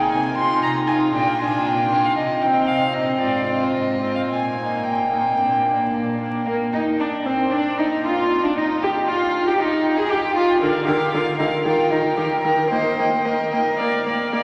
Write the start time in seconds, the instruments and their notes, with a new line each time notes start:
Already playing: viola D#4, violin G#4
0.00 violin G#5
0.11 cello C3, violin G#5
0.36 viola D#4, violin F4 C6
0.63 cello C3, violin A#5
0.87 viola D#4, violin F4 G#5
1.14 cello A#2, viola D4, violin F4 G5
1.41 viola D4, violin F4 G#5
1.65 cello A#2, violin G5
1.90 viola D4, violin F4
2.05 violin F5
2.16 cello C3, violin D#5
2.42 viola C4, violin D#4 G5
2.67 cello C3, violin F5
2.93 viola C4, violin D#4 D#5
3.19 cello G#2, viola C4, violin F4 D5
3.44 viola C4, violin F4
3.62 violin C5
3.75 cello G#2, violin D#5
4.01 viola C4, violin F4
4.15 violin F5
4.29 cello A#2, violin G#5
4.56 viola A#3, violin D#4
4.83 cello A#2, violin G5
5.12 viola A#3, violin D#4
5.38 cello A#2, viola A#3, violin D4
5.67 viola A#3, violin D4
5.93 cello A#2
6.20 viola A#3, violin D4
6.45 violin A#3, cello A#3, viola A#3
6.72 violin D#4, cello D#4, viola D#4
6.99 cello D4, violin D4, viola D4
7.25 cello C4, violin C4, viola C4
7.51 violin D4, cello D4, viola D4
7.77 violin D#4, cello D#4, viola D#4
8.04 violin F4, cello F4, viola F4
8.43 violin D4, cello D4, viola D4
8.56 violin D#4, cello D#4, viola D#4
8.82 violin G4, cello G4, viola G4
9.07 violin F4, cello F4, viola F4
9.46 violin G4, cello G4, viola G4
9.58 violin D#4, cello D#4, viola D#4
9.97 violin G#4, cello G#4, viola G#4
10.09 violin G4, cello G4, viola G4
10.35 cello F4, violin F4, viola F4
10.60 viola D3, cello D4, violin A#4 F5
10.85 viola D3, cello G4, violin A#4 F5
11.12 viola D3, cello F4, violin A#4 F5
11.37 viola D3, cello D#4, violin A#4 F5
11.65 viola D#3, cello F4, violin A#4 G5
11.91 viola D#3, cello D#4, violin A#4 G5
12.16 viola D#3, cello G4, violin A#4 G5
12.43 viola D#3, cello A#4, violin A#4 G5
12.70 viola A#3, cello C5, violin D#5 G5
12.97 viola A#3, violin D#5 G5
13.23 viola A#3, cello A#4, violin D#5 G5
13.51 viola A#3, violin D#5 G5
13.77 viola A#3, violin D5 F5
14.06 viola A#3, violin D5 F5
14.32 viola A#3, violin D5 F5